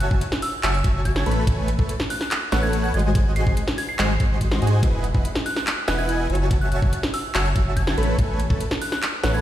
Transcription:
0.00 synth bell F#6, closed hi-hat
0.11 sub bass F#1, supersaw synth F#4 E5, kick
0.21 closed hi-hat
0.32 snare
0.42 synth bell E6, open hi-hat
0.63 sub bass F#1, supersaw synth F#4 C#5 E5 G#5 A5, synth bell E6, clap, closed hi-hat
0.74 synth bell E6
0.84 sub bass F#1, supersaw synth F#4 C#5 E5 G#5 A5, kick, closed hi-hat
1.05 synth bell G#6, kick, closed hi-hat
1.16 snare
1.26 sub bass A1, supersaw synth A3 A4 B4 C#5 B5, closed hi-hat
1.32 closed hi-hat
1.47 sub bass A1, supersaw synth A3 A4 B4 C#5 G#5, kick, closed hi-hat
1.68 closed hi-hat
1.79 sub bass A1, supersaw synth A3 A4 B4 C#5 A5, kick
1.89 closed hi-hat
2.00 snare
2.10 synth bell F#6, open hi-hat
2.21 synth bell F#6, snare
2.31 clap, closed hi-hat
2.52 sub bass A1, supersaw synth A3 A4 B4 C#5 F#5, synth bell F#6, snare, closed hi-hat
2.63 synth bell G#6
2.73 closed hi-hat
2.84 synth bell G#6
2.94 sub bass G#1, supersaw synth G#3 F#4 C5 D#5 G#5, synth bell G#6, closed hi-hat
2.99 closed hi-hat
3.15 kick, closed hi-hat
3.36 synth bell C7, closed hi-hat
3.47 sub bass G#1, supersaw synth G#3 D#5, kick
3.57 closed hi-hat
3.68 snare
3.78 synth bell G#6, open hi-hat
3.89 synth bell C7
3.99 sub bass G#1, supersaw synth G#3 F#4 C5 D#5 G#5, clap, closed hi-hat
4.20 sub bass G#1, supersaw synth G#3 F#4 C5 D#5 C6, kick, closed hi-hat
4.41 kick, closed hi-hat
4.51 snare
4.62 sub bass G#2, supersaw synth G#3 F#4 C5 D#5 G#5, closed hi-hat
4.67 closed hi-hat
4.83 sub bass E1, supersaw synth E4 D#5 G#5, kick, closed hi-hat
5.04 closed hi-hat
5.14 sub bass E1, supersaw synth E4 B4 D#5 F#5 B5, kick
5.25 closed hi-hat
5.35 snare
5.46 synth bell F#6, open hi-hat
5.56 synth bell F#6, snare
5.67 clap, closed hi-hat
5.88 sub bass E1, supersaw synth E4 B4 D#5 F#5 G#5, synth bell F#6, snare, closed hi-hat
5.98 synth bell G#6
6.09 closed hi-hat
6.30 sub bass F#1, supersaw synth F#4 C#5 E5 G#5 A5, closed hi-hat
6.35 closed hi-hat
6.51 kick, closed hi-hat
6.61 synth bell F#6
6.72 synth bell F#6, closed hi-hat
6.82 sub bass F#1, kick
6.93 closed hi-hat
7.03 snare
7.14 synth bell E6, open hi-hat
7.35 sub bass F#1, supersaw synth F#4 C#5 E5 G#5 A5, synth bell E6, clap, closed hi-hat
7.45 synth bell E6
7.56 sub bass F#1, supersaw synth F#4 C#5 E5 G#5 A5, kick, closed hi-hat
7.77 synth bell G#6, kick, closed hi-hat
7.87 snare
7.98 sub bass A1, supersaw synth A3 A4 B4 C#5 B5, closed hi-hat
8.03 closed hi-hat
8.19 sub bass A1, supersaw synth A3, kick, closed hi-hat
8.40 closed hi-hat
8.50 sub bass A1, supersaw synth A3 A4 B4 C#5 A5, kick
8.61 closed hi-hat
8.71 snare
8.82 synth bell F#6, open hi-hat
8.92 synth bell F#6, snare
9.03 clap, closed hi-hat
9.24 sub bass A1, supersaw synth A3 A4 B4 C#5 F#5, synth bell F#6, snare, closed hi-hat
9.34 synth bell G#6

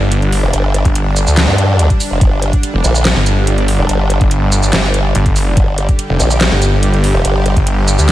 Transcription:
Already playing: detuned saw bass G1, supersaw synth D3 G3 D4, impact
0.12 closed hi-hat
0.22 closed hi-hat
0.32 open hi-hat
0.43 wobble bass F1
0.53 wobble bass G1, closed hi-hat
0.74 closed hi-hat
0.85 detuned saw bass G1, kick, closed hi-hat
0.95 closed hi-hat
1.16 closed hi-hat, shaker
1.27 detuned saw bass D2, shaker
1.37 snare, clap, closed hi-hat
1.48 wobble bass G2
1.58 closed hi-hat
1.79 closed hi-hat
1.90 kick, closed hi-hat
2.00 open hi-hat, shaker
2.11 wobble bass F1
2.21 wobble bass G1, kick, closed hi-hat
2.42 closed hi-hat
2.53 kick, closed hi-hat
2.63 closed hi-hat
2.74 detuned saw bass F1
2.84 wobble bass A#1, closed hi-hat, shaker
2.95 shaker
3.05 snare, clap, closed hi-hat
3.16 detuned saw bass G1
3.26 closed hi-hat, shaker
3.47 closed hi-hat
3.58 closed hi-hat
3.68 open hi-hat
3.79 wobble bass F1
3.89 wobble bass G1, closed hi-hat
4.10 closed hi-hat
4.21 detuned saw bass G1, kick, closed hi-hat
4.31 closed hi-hat
4.52 closed hi-hat, shaker
4.63 detuned saw bass G1, shaker
4.73 wobble bass G1, snare, clap, closed hi-hat
4.94 closed hi-hat
5.15 detuned saw bass G1, closed hi-hat
5.26 kick, closed hi-hat
5.36 open hi-hat, shaker
5.57 wobble bass G1, supersaw synth G4, kick, closed hi-hat
5.78 closed hi-hat
5.89 kick, closed hi-hat
5.99 closed hi-hat
6.10 detuned saw bass F1
6.20 wobble bass A#1, closed hi-hat, shaker
6.31 shaker
6.41 snare, clap, closed hi-hat
6.52 detuned saw bass G1
6.62 closed hi-hat, shaker
6.83 closed hi-hat
6.94 closed hi-hat
7.04 open hi-hat
7.14 wobble bass F1
7.25 wobble bass G1, closed hi-hat
7.46 closed hi-hat
7.57 detuned saw bass G1, kick, closed hi-hat
7.67 closed hi-hat
7.88 closed hi-hat, shaker
7.99 detuned saw bass D2, shaker
8.09 snare, clap, closed hi-hat

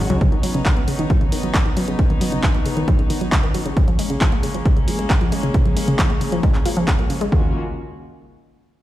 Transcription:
Already playing: string section G#3 C#4 F#4
0.10 analog synth bass C#2, synth arpeggio sound F#3, closed hi-hat
0.21 synth arpeggio sound C#3, string section B3 D#4, kick, closed hi-hat
0.32 synth arpeggio sound D#3, closed hi-hat
0.43 synth arpeggio sound F#3, open hi-hat
0.54 synth arpeggio sound C#3, closed hi-hat
0.66 synth arpeggio sound D#3, kick, clap, closed hi-hat
0.77 synth arpeggio sound B3, closed hi-hat
0.88 synth arpeggio sound C#3, open hi-hat
0.99 synth arpeggio sound D#3, closed hi-hat
1.10 synth arpeggio sound F#3, kick, closed hi-hat
1.21 synth arpeggio sound C#3, closed hi-hat
1.32 synth arpeggio sound D#3, open hi-hat
1.43 synth arpeggio sound F#3, closed hi-hat
1.54 synth arpeggio sound C#3, kick, clap, closed hi-hat
1.66 synth arpeggio sound D#3, closed hi-hat
1.77 synth arpeggio sound F#3, open hi-hat
1.88 synth arpeggio sound C#3, closed hi-hat
1.99 synth arpeggio sound C#3, kick, closed hi-hat
2.10 synth arpeggio sound D#3, closed hi-hat
2.21 synth arpeggio sound F#3, open hi-hat
2.32 synth arpeggio sound C#3, closed hi-hat
2.43 synth arpeggio sound D#3, kick, clap, closed hi-hat
2.54 synth arpeggio sound B3, closed hi-hat
2.66 synth arpeggio sound C#3, open hi-hat
2.77 synth arpeggio sound D#3, closed hi-hat
2.88 synth arpeggio sound F#3, kick, closed hi-hat
2.99 synth arpeggio sound C#3, closed hi-hat
3.10 synth arpeggio sound D#3, open hi-hat
3.21 synth arpeggio sound F#3, closed hi-hat
3.32 synth arpeggio sound C#3, kick, clap, closed hi-hat
3.43 synth arpeggio sound D#3, closed hi-hat
3.54 synth arpeggio sound F#3, open hi-hat
3.66 synth arpeggio sound C#3, closed hi-hat
3.77 synth arpeggio sound C#3, string section G#3 A#3 C#4, kick, closed hi-hat
3.88 synth arpeggio sound F3, closed hi-hat
3.99 synth arpeggio sound G#3, open hi-hat
4.10 synth arpeggio sound C#3, closed hi-hat
4.21 synth arpeggio sound F3, kick, clap, closed hi-hat
4.32 synth arpeggio sound A#3, closed hi-hat
4.43 synth arpeggio sound C#3, open hi-hat
4.54 synth arpeggio sound F3, closed hi-hat
4.65 synth arpeggio sound G#3, kick, closed hi-hat
4.77 synth arpeggio sound C#3, closed hi-hat
4.88 synth arpeggio sound F3, open hi-hat
4.99 synth arpeggio sound G#3, closed hi-hat
5.10 synth arpeggio sound C#3, kick, clap, closed hi-hat
5.21 synth arpeggio sound F3, closed hi-hat
5.32 synth arpeggio sound G#3, open hi-hat
5.43 synth arpeggio sound C#3, closed hi-hat
5.54 synth arpeggio sound C#3, kick, closed hi-hat
5.66 synth arpeggio sound F3, closed hi-hat
5.77 synth arpeggio sound G#3, open hi-hat
5.88 synth arpeggio sound C#3, closed hi-hat
5.99 synth arpeggio sound F3, kick, clap, closed hi-hat
6.10 synth arpeggio sound A#3, closed hi-hat
6.21 synth arpeggio sound C#3, open hi-hat
6.32 synth arpeggio sound F3, closed hi-hat
6.43 synth arpeggio sound G#3, kick, closed hi-hat
6.54 synth arpeggio sound C#3, clap, closed hi-hat
6.66 synth arpeggio sound F4, open hi-hat
6.77 synth arpeggio sound F3, closed hi-hat
6.88 synth arpeggio sound C#3, kick, clap, closed hi-hat
6.99 synth arpeggio sound A#3, closed hi-hat
7.10 synth arpeggio sound C#3, open hi-hat
7.21 synth arpeggio sound G#3, closed hi-hat
7.32 analog synth bass D#2, synth arpeggio sound C#3, string section D#3 A#3 C#4 F4 F#4, kick

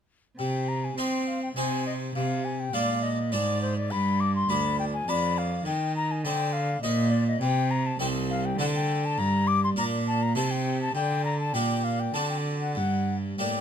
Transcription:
0.38 cello C3, harpsichord C3, flute G5
0.68 flute A#5
0.84 flute G#5
0.97 cello C4, harpsichord C4 D#4 C5, flute G5
1.28 flute F5
1.43 flute G5
1.56 cello C3, harpsichord C3 C4 D#4 C5, flute G#5
1.87 flute D#5
2.15 cello C3, harpsichord C3, flute F5
2.45 flute G#5
2.60 flute G5
2.73 cello A#2, harpsichord A#2 G#3 D4 D5, flute F5
3.03 flute D#5
3.32 harpsichord G#2 G#3 D4 D5, cello G#2, flute D5
3.62 flute C5
3.78 flute D5
3.91 harpsichord G2, cello G2, flute B5
4.20 flute D6
4.36 flute C6
4.49 harpsichord D2 D4 D5, cello D2, flute B5
4.79 flute G5
4.94 flute G#5
5.07 cello F2, harpsichord F2 D4 D5, flute B5
5.38 flute F5
5.65 cello D#3, harpsichord D#3, flute G5
5.96 flute A#5
6.11 flute G#5
6.24 cello D3, harpsichord D3 D#4 C5, flute G5
6.53 flute F5
6.82 cello A#2, harpsichord A#2 D#4 C5, flute D#5
7.11 flute D5
7.28 flute D#5
7.41 cello C3, harpsichord C3, flute G5
7.71 flute A#5
7.86 flute A5
7.99 harpsichord C2 A3 D#4 C5, cello C2, flute G5
8.30 flute F5
8.45 flute G5
8.59 harpsichord D3 A3 D4 C5, cello D3, flute F#5
8.75 flute G5
9.05 flute A5
9.18 harpsichord G2, cello G2, flute A#5
9.48 flute D6
9.64 flute C6
9.76 harpsichord A#2 D4 A#4, cello A#2, flute A#5
10.08 flute A5
10.23 flute A#5
10.35 harpsichord C3 A3 D#4 C5, cello C3, flute A5
10.51 flute G5
10.82 flute A5
10.95 harpsichord D3, cello D3, flute G5
11.25 flute A#5
11.40 flute A5
11.54 cello A#2, harpsichord A#2 A#3 D4 G4, flute G5
11.84 flute F5
12.00 flute G5
12.14 harpsichord D3 C4 D4 F#4, cello D3, flute A5
12.30 flute G5
12.61 flute F#5
12.75 harpsichord G2, cello G2, flute F#5
13.38 harpsichord A2 A#3 D4 G4, cello A2, flute G5

